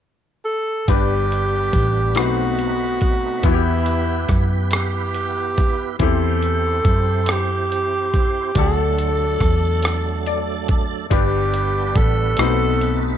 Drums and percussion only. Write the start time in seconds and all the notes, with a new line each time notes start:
0.88 kick, closed hi-hat
1.32 closed hi-hat
1.73 kick, closed hi-hat
2.15 cross-stick, closed hi-hat
2.59 closed hi-hat
3.01 kick, closed hi-hat
3.43 kick, closed hi-hat
3.86 closed hi-hat
4.29 kick, cross-stick, closed hi-hat
4.71 cross-stick, closed hi-hat
5.14 closed hi-hat
5.58 kick, closed hi-hat
5.99 kick, closed hi-hat
6.42 closed hi-hat
6.85 kick, closed hi-hat
7.26 cross-stick, closed hi-hat
7.72 closed hi-hat
8.14 kick, closed hi-hat
8.55 kick, closed hi-hat
8.98 closed hi-hat
9.40 kick, cross-stick, closed hi-hat
9.83 cross-stick, closed hi-hat
10.26 closed hi-hat
10.68 kick, closed hi-hat
11.11 kick, closed hi-hat
11.54 closed hi-hat
11.95 kick, closed hi-hat
12.37 cross-stick, closed hi-hat
12.81 closed hi-hat